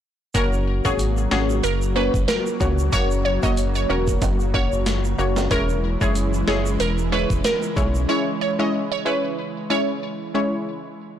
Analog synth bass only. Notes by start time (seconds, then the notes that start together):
0.35 F#1
0.85 G#1
1.32 G#1
1.64 F#1
2.14 F#1
2.61 C#2
2.93 F#1
3.43 F#1
3.89 E1
4.22 F#1
4.72 F#1
5.19 F#1
5.51 E1
6.01 F#1
6.48 F#1
6.80 E1
7.30 E1
7.77 B1